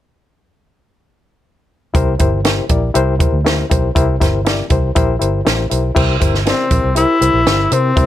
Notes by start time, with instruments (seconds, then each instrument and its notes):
1.94 fingered electric bass C2, reed electric piano C3 E4 G4 A#4 C5, kick, closed hi-hat
2.19 fingered electric bass G1, reed electric piano E4 G4 A#4 C5, kick, closed hi-hat
2.44 reed electric piano E4 G4 A#4 C5, snare, closed hi-hat
2.69 fingered electric bass A#1, reed electric piano E4 G4 A#4 D5, kick, closed hi-hat
2.94 fingered electric bass C2, reed electric piano E4 G4 A#4 C5, closed hi-hat
3.19 reed electric piano E4 G4 A#4 C5, kick, closed hi-hat
3.33 fingered electric bass D2
3.45 reed electric piano E4 G4 A#4 C5, snare, closed hi-hat
3.70 fingered electric bass B1, reed electric piano E4 G4 A#4 C5, kick, closed hi-hat
3.95 fingered electric bass C2, reed electric piano C3 E4 G4 A#4 C5, kick, closed hi-hat
4.20 fingered electric bass G1, reed electric piano E4 G4 A#4 C5, kick, snare, closed hi-hat
4.45 reed electric piano E4 G4 A#4 D5, snare, closed hi-hat
4.70 fingered electric bass C2, reed electric piano E4 G4 A#4 C5, kick, closed hi-hat
4.95 fingered electric bass A#1, reed electric piano E4 G4 A#4 C5, kick, closed hi-hat
5.19 fingered electric bass G1, reed electric piano E4 G4 A#4 C5, closed hi-hat
5.45 fingered electric bass A1, reed electric piano E4 G4 A#4 C5, snare, closed hi-hat
5.70 fingered electric bass B1, reed electric piano E4 G4 A#4 C5, closed hi-hat
5.95 fingered electric bass C2, reed electric piano C3 E4 G4 A#4 C5, kick, crash
6.20 fingered electric bass G1, reed electric piano E4 G4 A#4 C5, kick, closed hi-hat
6.34 snare
6.46 tenor saxophone C4, reed electric piano E4 G4 A#4 D5, snare, closed hi-hat
6.70 fingered electric bass A#1, reed electric piano E4 G4 A#4 C5, kick, closed hi-hat
6.84 fingered electric bass C2
6.95 reed electric piano E4 G4 A#4 C5, tenor saxophone E4, closed hi-hat
7.20 fingered electric bass C2, reed electric piano E4 G4 A#4 C5, closed hi-hat
7.34 fingered electric bass A#1
7.46 fingered electric bass G1, reed electric piano E4 G4 A#4 C5, snare, closed hi-hat
7.71 fingered electric bass C3, tenor saxophone C4, reed electric piano E4 G4 A#4 C5, closed hi-hat
7.96 fingered electric bass C2, reed electric piano C3 E4 G4 A#4 C5, kick, closed hi-hat